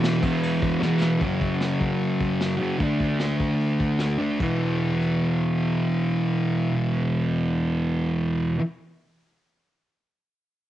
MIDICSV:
0, 0, Header, 1, 3, 480
1, 0, Start_track
1, 0, Tempo, 397088
1, 1461, Time_signature, 4, 2, 24, 8
1, 4351, Tempo, 402955
1, 12797, End_track
2, 0, Start_track
2, 0, Title_t, "Distorted electric guitar"
2, 0, Program_c, 0, 30
2, 0, Note_on_c, 0, 40, 97
2, 0, Note_on_c, 0, 47, 93
2, 0, Note_on_c, 0, 52, 115
2, 239, Note_off_c, 0, 52, 0
2, 249, Note_off_c, 0, 40, 0
2, 254, Note_on_c, 0, 52, 96
2, 265, Note_off_c, 0, 47, 0
2, 288, Note_on_c, 0, 47, 84
2, 312, Note_on_c, 0, 40, 78
2, 962, Note_off_c, 0, 40, 0
2, 962, Note_off_c, 0, 52, 0
2, 976, Note_on_c, 0, 40, 81
2, 979, Note_off_c, 0, 47, 0
2, 1006, Note_on_c, 0, 47, 97
2, 1028, Note_on_c, 0, 52, 98
2, 1440, Note_off_c, 0, 40, 0
2, 1445, Note_on_c, 0, 42, 99
2, 1459, Note_off_c, 0, 47, 0
2, 1470, Note_off_c, 0, 52, 0
2, 1481, Note_on_c, 0, 49, 102
2, 1508, Note_on_c, 0, 54, 116
2, 3093, Note_off_c, 0, 54, 0
2, 3107, Note_on_c, 0, 54, 88
2, 3120, Note_off_c, 0, 42, 0
2, 3130, Note_off_c, 0, 49, 0
2, 3145, Note_on_c, 0, 49, 79
2, 3164, Note_on_c, 0, 42, 75
2, 3352, Note_off_c, 0, 54, 0
2, 3358, Note_off_c, 0, 49, 0
2, 3363, Note_on_c, 0, 50, 94
2, 3381, Note_off_c, 0, 42, 0
2, 3397, Note_on_c, 0, 57, 96
2, 3425, Note_on_c, 0, 62, 98
2, 5034, Note_off_c, 0, 62, 0
2, 5043, Note_off_c, 0, 50, 0
2, 5048, Note_on_c, 0, 62, 76
2, 5060, Note_off_c, 0, 57, 0
2, 5078, Note_on_c, 0, 57, 80
2, 5111, Note_on_c, 0, 50, 62
2, 5283, Note_off_c, 0, 62, 0
2, 5298, Note_off_c, 0, 57, 0
2, 5300, Note_on_c, 0, 40, 89
2, 5314, Note_off_c, 0, 50, 0
2, 5320, Note_on_c, 0, 47, 84
2, 5347, Note_on_c, 0, 52, 92
2, 10273, Note_off_c, 0, 40, 0
2, 10293, Note_off_c, 0, 47, 0
2, 10320, Note_off_c, 0, 52, 0
2, 12797, End_track
3, 0, Start_track
3, 0, Title_t, "Drums"
3, 42, Note_on_c, 9, 49, 88
3, 46, Note_on_c, 9, 38, 117
3, 163, Note_off_c, 9, 49, 0
3, 167, Note_off_c, 9, 38, 0
3, 275, Note_on_c, 9, 49, 69
3, 278, Note_on_c, 9, 36, 93
3, 396, Note_off_c, 9, 49, 0
3, 398, Note_off_c, 9, 36, 0
3, 521, Note_on_c, 9, 49, 99
3, 642, Note_off_c, 9, 49, 0
3, 755, Note_on_c, 9, 49, 74
3, 756, Note_on_c, 9, 36, 93
3, 875, Note_off_c, 9, 49, 0
3, 877, Note_off_c, 9, 36, 0
3, 1001, Note_on_c, 9, 38, 71
3, 1122, Note_off_c, 9, 38, 0
3, 1225, Note_on_c, 9, 38, 98
3, 1346, Note_off_c, 9, 38, 0
3, 1456, Note_on_c, 9, 46, 75
3, 1465, Note_on_c, 9, 36, 102
3, 1577, Note_off_c, 9, 46, 0
3, 1586, Note_off_c, 9, 36, 0
3, 1707, Note_on_c, 9, 36, 87
3, 1709, Note_on_c, 9, 46, 49
3, 1828, Note_off_c, 9, 36, 0
3, 1830, Note_off_c, 9, 46, 0
3, 1939, Note_on_c, 9, 46, 62
3, 1943, Note_on_c, 9, 38, 100
3, 2060, Note_off_c, 9, 46, 0
3, 2064, Note_off_c, 9, 38, 0
3, 2183, Note_on_c, 9, 46, 53
3, 2186, Note_on_c, 9, 36, 91
3, 2303, Note_off_c, 9, 46, 0
3, 2307, Note_off_c, 9, 36, 0
3, 2429, Note_on_c, 9, 46, 69
3, 2549, Note_off_c, 9, 46, 0
3, 2655, Note_on_c, 9, 46, 50
3, 2666, Note_on_c, 9, 36, 75
3, 2776, Note_off_c, 9, 46, 0
3, 2786, Note_off_c, 9, 36, 0
3, 2902, Note_on_c, 9, 46, 66
3, 2905, Note_on_c, 9, 38, 105
3, 3023, Note_off_c, 9, 46, 0
3, 3026, Note_off_c, 9, 38, 0
3, 3137, Note_on_c, 9, 46, 50
3, 3258, Note_off_c, 9, 46, 0
3, 3375, Note_on_c, 9, 46, 73
3, 3387, Note_on_c, 9, 36, 115
3, 3496, Note_off_c, 9, 46, 0
3, 3508, Note_off_c, 9, 36, 0
3, 3618, Note_on_c, 9, 46, 54
3, 3628, Note_on_c, 9, 36, 86
3, 3739, Note_off_c, 9, 46, 0
3, 3749, Note_off_c, 9, 36, 0
3, 3857, Note_on_c, 9, 46, 72
3, 3861, Note_on_c, 9, 38, 100
3, 3978, Note_off_c, 9, 46, 0
3, 3982, Note_off_c, 9, 38, 0
3, 4095, Note_on_c, 9, 46, 52
3, 4109, Note_on_c, 9, 36, 81
3, 4216, Note_off_c, 9, 46, 0
3, 4230, Note_off_c, 9, 36, 0
3, 4346, Note_on_c, 9, 46, 75
3, 4465, Note_off_c, 9, 46, 0
3, 4590, Note_on_c, 9, 46, 52
3, 4592, Note_on_c, 9, 36, 78
3, 4709, Note_off_c, 9, 46, 0
3, 4711, Note_off_c, 9, 36, 0
3, 4809, Note_on_c, 9, 46, 73
3, 4813, Note_on_c, 9, 38, 98
3, 4929, Note_off_c, 9, 46, 0
3, 4932, Note_off_c, 9, 38, 0
3, 5057, Note_on_c, 9, 46, 48
3, 5176, Note_off_c, 9, 46, 0
3, 5307, Note_on_c, 9, 57, 76
3, 5308, Note_on_c, 9, 36, 110
3, 5426, Note_off_c, 9, 57, 0
3, 5427, Note_off_c, 9, 36, 0
3, 6026, Note_on_c, 9, 37, 59
3, 6145, Note_off_c, 9, 37, 0
3, 12797, End_track
0, 0, End_of_file